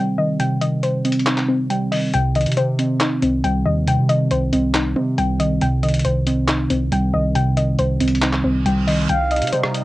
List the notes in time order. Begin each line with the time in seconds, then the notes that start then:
Already playing: C3 D#3 G3 C4 D#4 C5 D#5 G5
0.18 D#3 D#5
0.40 C3 G5, closed hi-hat
0.61 D#3 D#5, closed hi-hat
0.83 C5, closed hi-hat
1.05 C4, closed hi-hat
1.12 closed hi-hat
1.19 closed hi-hat
1.26 D#4, clap, closed hi-hat
1.38 clap
1.48 C4
1.70 G3 G5, closed hi-hat
1.92 D#3 D#5, open hi-hat
2.14 C2 C3 G5, closed hi-hat
2.35 D#3 D#5, closed hi-hat
2.41 closed hi-hat
2.46 C3, closed hi-hat
2.52 closed hi-hat
2.57 C3 C5, closed hi-hat
2.79 C4, closed hi-hat
3.00 D#4, clap, closed hi-hat
3.22 C2 C4, closed hi-hat
3.44 C2 G3 G5, closed hi-hat
3.66 D#2 D#3 D#5
3.88 C3 G5, closed hi-hat
3.98 C3
4.09 D#3 D#5, closed hi-hat
4.31 C2 C5, closed hi-hat
4.53 C2 C4, closed hi-hat
4.74 D#4, clap, closed hi-hat
4.96 C3 C4
5.18 C2 G3 G5, closed hi-hat
5.40 D#3 D#5, closed hi-hat
5.61 C2 C3 G5, closed hi-hat
5.83 D#3 D#5, closed hi-hat
5.88 closed hi-hat
5.94 closed hi-hat
5.99 closed hi-hat
6.05 C2 C5, closed hi-hat
6.27 C4, closed hi-hat
6.48 D#4, clap, closed hi-hat
6.70 C2 C4, closed hi-hat
6.92 C2 G3 G5, closed hi-hat
7.13 C2 D#3 D#5
7.35 C3 G5, closed hi-hat
7.57 D#3 D#5, closed hi-hat
7.79 C2 C5, closed hi-hat
8.00 C2 C4, closed hi-hat
8.08 closed hi-hat
8.15 closed hi-hat
8.22 D#4, clap, closed hi-hat, reverse cymbal
8.33 clap
8.44 C2 C4
8.66 C2 G3 G5, closed hi-hat
8.87 D#3 D#5, open hi-hat
9.09 C2 C3 G3 D#4 F5 G5, closed hi-hat
9.31 D#5, closed hi-hat
9.36 closed hi-hat
9.42 C3, closed hi-hat
9.47 closed hi-hat
9.53 C3 C5, closed hi-hat
9.63 cross-stick
9.74 closed hi-hat